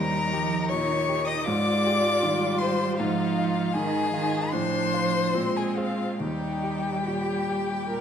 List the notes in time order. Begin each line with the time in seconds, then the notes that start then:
Already playing: D#2 G3 D#4 A#4 A#5
0.33 F3 G4
0.70 A#2 D#3 C#5 C#6
1.09 G4
1.25 D#5 D#6
1.44 G#2 G#3 F4 D5 D6
1.86 G4
2.22 D#3 G3
2.58 G4 C5 C6
2.97 G#2 F3 D#4 F4 F5
3.39 F4
3.73 D#3 D#4 G#4 G#5
4.12 D#3 F4
4.49 A2 F3 D4 C5 C6
4.94 F4 C5
5.34 A#2 G#3 C4
5.57 G#4 G#5
5.76 F4 G#4 C5 F5
6.19 D#2 G3 D#4 G4 G5
6.63 G4
7.05 A#2 G4
7.47 G4
7.89 A#2 A#4